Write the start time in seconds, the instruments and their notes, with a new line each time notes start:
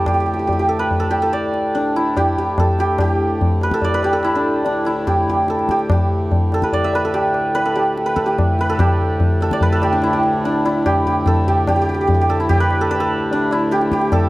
Already playing: harmonium D2 A2, santur D4 E4 A4 B4
0.06 santur G4, tabla na, tabla ge
0.14 santur G4
0.20 santur G4
0.26 santur G4
0.34 santur G4
0.39 santur G4
0.47 santur G4, tabla tin, tabla ge
0.52 santur G4
0.59 santur G4
0.69 santur A4
0.79 santur B4
0.91 tabla tin, tabla ge
1.00 santur A4
1.11 santur G4, tabla na
1.22 santur A4
1.33 santur D5, tabla te
1.54 tabla te
1.75 santur D4, tabla tin
1.96 santur E4
2.17 santur G4, tabla na, tabla ge
2.38 santur G4, tabla ge
2.58 santur A4, tabla na, tabla ge
2.79 santur G4, tabla te
2.98 santur G4, tabla na, tabla ge
3.41 tabla tin, tabla ge
3.61 santur B4, tabla na
3.71 santur A4, tabla ke
3.82 santur D5, tabla tin, tabla ge
3.94 santur B4
4.03 santur G4, tabla na
4.13 santur A4
4.23 santur E4, tabla na
4.35 santur D4
4.65 santur D4, tabla tin
4.85 santur E4, tabla na
5.07 santur G4, tabla na, tabla ge
5.28 santur G4, tabla ge
5.48 santur A4, tabla te
5.59 tabla te
5.69 santur G4, tabla ke
5.79 tabla te
5.90 santur G4, tabla na, tabla ge
6.32 tabla tin, tabla ge
6.52 santur A4, tabla na
6.62 santur B4, tabla ke
6.73 santur D5, tabla tin, tabla ge
6.84 santur E5
6.93 santur B4, tabla na
7.05 santur A4
7.14 santur G4, tabla na
7.34 tabla na
7.55 santur B4, tabla tin
7.66 santur A4
7.76 santur G4, tabla na
7.98 tabla te
8.06 santur B4, tabla te
8.16 santur A4, tabla ke
8.26 santur G4, tabla te
8.39 tabla na, tabla ge
8.59 santur B4, tabla te
8.70 santur A4
8.79 harmonium D2 A2, santur G4, tabla na, tabla ge
9.20 tabla tin, tabla ge
9.41 santur A4, tabla na
9.51 santur D5, tabla ke
9.61 santur B4, tabla tin, tabla ge
9.72 santur A4
9.82 santur G4, tabla na
9.93 santur D4
10.02 santur E4, tabla na
10.13 santur G4
10.23 tabla na
10.44 santur D4, tabla tin
10.65 santur E4, tabla na
10.86 santur G4, tabla na, tabla ge
11.06 santur G4, tabla ge
11.26 santur A4, tabla na, tabla ge
11.47 santur G4, tabla ge
11.67 santur G4, tabla na, tabla ge
11.76 santur G4
11.82 santur G4
11.89 santur G4
11.94 santur G4
12.01 santur G4
12.07 santur G4, tabla tin, tabla ge
12.14 santur G4
12.21 santur G4
12.29 santur A4, tabla na
12.40 santur E4
12.49 santur G4, tabla tin, tabla ge
12.60 santur B4
12.71 tabla na
12.81 santur A4
12.91 santur B4, tabla na
13.00 santur A4
13.31 santur D4, tabla tin
13.51 santur E4, tabla na
13.71 santur G4, tabla te
13.81 tabla te
13.92 santur G4, tabla ke
14.02 tabla te
14.12 santur A4, tabla na, tabla ge